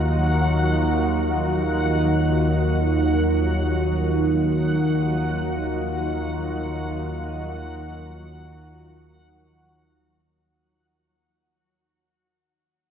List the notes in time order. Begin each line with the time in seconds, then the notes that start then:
Already playing: D#2 D#3 F#3 D#4 F4 F#4 A#4 F#5